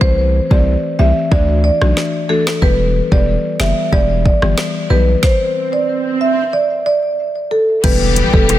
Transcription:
0.01 0.40 C2 loud
0.01 0.24 E3 medium
0.01 0.24 A3 medium
0.01 0.24 C4 medium
0.01 0.24 G4 loud
0.01 0.22 C5 loud
0.01 kick loud
0.51 0.77 C2 medium
0.51 0.95 E3 medium
0.51 0.95 A3 medium
0.51 0.96 C4 medium
0.51 0.96 G4 medium
0.51 0.61 D5 medium
0.51 kick medium
0.99 1.13 C2 medium
0.99 1.29 E3 medium
0.99 1.29 A3 medium
0.99 1.29 C4 medium
0.99 1.29 G4 medium
0.99 1.10 E5 medium
1.31 1.71 D2 loud
1.31 1.54 E3 medium
1.31 1.54 A3 medium
1.31 1.54 D4 medium
1.31 1.54 F#4 loud
1.31 1.42 D5 medium
1.31 kick medium
1.64 1.75 D5 medium
1.81 1.94 B1 medium
1.81 2.03 E3 medium
1.81 2.03 A3 medium
1.81 2.03 D4 medium
1.81 2.03 F#4 medium
1.81 cross-stick medium
1.97 snare medium
2.29 2.52 E3 medium
2.29 2.52 A3 medium
2.29 2.52 D4 medium
2.29 2.52 F#4 medium
2.29 2.40 A4 medium
2.47 snare loud
2.62 3.01 E1 loud
2.62 2.85 E3 medium
2.62 2.85 G3 medium
2.62 2.85 B3 medium
2.62 2.85 G4 loud
2.62 2.83 B4 loud
2.62 kick loud
2.62 swell medium
3.12 3.37 E1 loud
3.12 3.56 E3 medium
3.12 3.56 G3 medium
3.12 3.57 B3 medium
3.12 3.57 G4 medium
3.12 3.22 D5 medium
3.12 kick medium
3.60 3.73 F#1 medium
3.60 3.90 E3 medium
3.60 3.90 G3 medium
3.60 3.90 B3 medium
3.60 3.90 G4 medium
3.60 3.71 E5 medium
3.60 snare loud
3.92 4.32 E1 loud
3.92 4.15 E3 medium
3.92 4.15 G3 medium
3.92 4.15 B3 medium
3.92 4.15 G4 loud
3.92 4.04 D5 medium
3.92 kick loud
4.26 4.36 D5 medium
4.26 kick medium
4.42 4.54 G1 medium
4.42 4.64 E3 medium
4.42 4.64 G3 medium
4.42 4.64 B3 medium
4.42 4.64 G4 medium
4.42 cross-stick medium
4.58 snare loud
4.90 5.16 B1 medium
4.90 5.13 E3 medium
4.90 5.13 G3 medium
4.90 5.13 B3 medium
4.90 5.13 G4 medium
4.90 5.01 B4 medium
5.23 5.43 C5 loud
5.23 kick loud
5.23 snare medium
5.73 5.83 D5 medium
6.21 6.32 E5 medium
6.53 6.64 D5 medium
6.86 6.97 D5 medium
7.51 7.62 A4 medium
7.84 8.23 E1 loud
7.84 8.06 E3 medium
7.84 8.59 E3 medium
7.84 8.59 G3 medium
7.84 8.06 G3 medium
7.84 8.59 B3 medium
7.84 8.06 B3 medium
7.84 8.59 G4 medium
7.84 8.07 G4 loud
7.84 8.04 B4 loud
7.84 kick loud
7.84 closed hi-hat medium
7.84 crash medium
7.84 impact medium
8.16 closed hi-hat medium
8.33 8.59 E1 loud
8.33 8.59 E3 medium
8.33 8.59 G3 medium
8.33 8.59 B3 medium
8.33 8.59 G4 medium
8.33 8.43 A4 medium
8.33 kick medium
8.49 closed hi-hat medium
8.49 high bongo medium

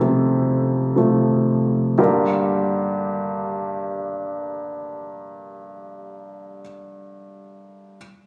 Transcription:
0.00 2.01 F2 soft
0.00 0.96 C3 soft
0.00 0.97 F3 soft
0.00 0.97 A3 soft
0.00 0.92 C4 soft
0.00 0.96 A4 medium
0.96 1.94 C3 soft
0.96 1.94 F3 soft
0.96 1.94 A3 soft
1.98 6.61 G2 soft
1.98 6.61 D3 soft
1.98 6.61 A#3 soft
1.98 6.61 D4 soft
1.98 6.61 G4 soft
1.98 6.62 A#4 soft

